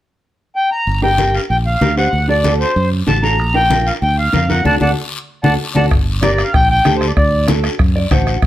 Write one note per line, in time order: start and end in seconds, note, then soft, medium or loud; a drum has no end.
0.56 0.70 G5 medium
0.71 1.00 A#5 medium
0.87 1.37 G1 medium
0.87 high conga soft
0.87 long guiro medium
1.02 1.08 D4 medium
1.02 1.08 G4 medium
1.02 1.08 A#4 medium
1.02 1.35 G5 medium
1.18 1.40 D4 medium
1.18 1.40 G4 soft
1.18 1.40 A#4 medium
1.18 high conga medium
1.18 short guiro medium
1.34 1.41 F5 medium
1.34 short guiro medium
1.50 1.75 A#1 medium
1.50 1.57 G5 medium
1.50 long guiro medium
1.66 1.95 F5 medium
1.66 high conga soft
1.81 2.06 D2 medium
1.81 1.87 D4 medium
1.81 1.87 G4 medium
1.81 1.87 A#4 medium
1.81 high conga medium
1.81 short guiro medium
1.97 2.08 D4 medium
1.97 2.08 G4 medium
1.97 2.08 C5 medium
1.97 2.27 F#5 medium
1.97 short guiro medium
2.13 2.63 D2 medium
2.13 high conga soft
2.13 long guiro medium
2.28 2.34 D4 medium
2.28 2.34 F#4 medium
2.28 2.34 A4 medium
2.28 2.54 D5 medium
2.44 2.66 D4 medium
2.44 2.66 F#4 medium
2.44 2.67 A4 medium
2.44 high conga medium
2.44 short guiro medium
2.60 2.89 C5 medium
2.60 short guiro medium
2.76 3.01 F#2 loud
2.76 long guiro medium
2.92 high conga soft
3.07 3.39 A1 medium
3.07 3.13 D4 medium
3.07 3.13 F#4 medium
3.07 3.13 A4 medium
3.07 3.24 A5 medium
3.07 high conga medium
3.07 short guiro medium
3.23 3.34 D4 medium
3.23 3.34 F#4 medium
3.23 3.34 A4 medium
3.23 3.56 A#5 medium
3.23 short guiro medium
3.39 3.89 A#1 medium
3.39 high conga soft
3.39 long guiro medium
3.54 3.60 D4 medium
3.54 3.60 F4 medium
3.54 3.60 A#4 medium
3.54 3.87 G5 medium
3.70 3.92 D4 medium
3.70 3.93 F4 medium
3.70 3.93 A#4 medium
3.70 high conga medium
3.70 short guiro medium
3.87 3.94 F5 medium
3.87 short guiro medium
4.02 4.27 D2 medium
4.02 4.17 G5 loud
4.02 long guiro medium
4.18 4.51 F5 medium
4.18 high conga soft
4.33 4.65 F2 medium
4.33 4.39 D4 medium
4.33 4.39 F4 medium
4.33 4.39 A#4 medium
4.33 high conga medium
4.33 short guiro medium
4.49 4.60 D4 medium
4.49 4.60 F4 soft
4.49 4.61 A#4 medium
4.49 4.64 F#5 medium
4.49 high conga medium
4.49 short guiro medium
4.65 4.77 D2 medium
4.65 4.75 D4 medium
4.65 4.75 F#4 medium
4.65 4.75 A4 medium
4.65 4.76 D5 medium
4.65 4.75 F#5 medium
4.65 4.75 A5 medium
4.65 high conga medium
4.65 long guiro medium
4.81 4.93 D2 medium
4.81 4.91 D4 medium
4.81 4.91 F#4 medium
4.81 4.91 A4 medium
4.81 4.91 D5 medium
4.81 4.91 F#5 medium
4.81 4.91 A5 medium
4.81 high conga medium
4.81 long guiro loud
5.43 5.56 D2 medium
5.43 5.54 D4 medium
5.43 5.54 F#4 medium
5.43 5.54 A4 medium
5.43 5.54 D5 medium
5.43 5.54 F#5 medium
5.43 5.54 A5 medium
5.43 high conga medium
5.43 long guiro medium
5.75 5.87 D2 medium
5.75 5.86 D4 medium
5.75 5.86 F#4 medium
5.75 5.86 A4 medium
5.75 5.85 D5 medium
5.75 5.85 F#5 medium
5.75 5.86 A5 medium
5.75 high conga medium
5.75 long guiro medium
5.91 6.42 G1 medium
5.91 bombo low medium
5.91 bombo rim medium
5.91 high conga soft
5.91 long guiro medium
6.22 6.44 D4 medium
6.22 6.45 G4 medium
6.22 6.45 A#4 medium
6.22 6.32 D5 medium
6.22 bombo rim medium
6.22 high conga medium
6.22 short guiro medium
6.33 6.43 D5 medium
6.38 bombo rim medium
6.38 short guiro medium
6.43 6.53 F5 medium
6.54 6.79 A#1 loud
6.54 6.68 G5 loud
6.54 bombo low medium
6.54 bombo rim medium
6.54 long guiro medium
6.70 6.94 G5 loud
6.70 high conga soft
6.85 7.11 D2 medium
6.85 7.07 D4 medium
6.85 7.08 G4 medium
6.85 7.08 A4 medium
6.85 bombo rim medium
6.85 high conga medium
6.85 short guiro medium
6.96 7.06 C5 medium
7.01 bombo rim medium
7.01 short guiro medium
7.07 7.12 D5 medium
7.17 7.67 D2 medium
7.17 7.46 D5 medium
7.17 bombo low medium
7.17 bombo rim medium
7.17 high conga soft
7.17 long guiro medium
7.48 7.70 D4 medium
7.48 7.70 F#4 medium
7.48 7.71 A4 medium
7.48 bombo rim medium
7.48 high conga medium
7.48 short guiro medium
7.64 bombo rim medium
7.64 short guiro medium
7.79 8.05 F#2 loud
7.79 bombo low medium
7.79 bombo rim medium
7.79 long guiro medium
7.96 8.10 D5 medium
7.96 high conga soft
8.11 8.36 A1 medium
8.11 8.33 D4 medium
8.11 8.34 F#4 medium
8.11 8.34 C5 medium
8.11 8.41 F#5 medium
8.11 bombo low medium
8.11 bombo rim medium
8.11 high conga medium
8.11 short guiro medium
8.27 bombo rim medium
8.27 short guiro medium
8.42 8.47 A#1 loud
8.42 bombo low medium
8.42 bombo rim medium
8.42 high conga soft
8.42 long guiro medium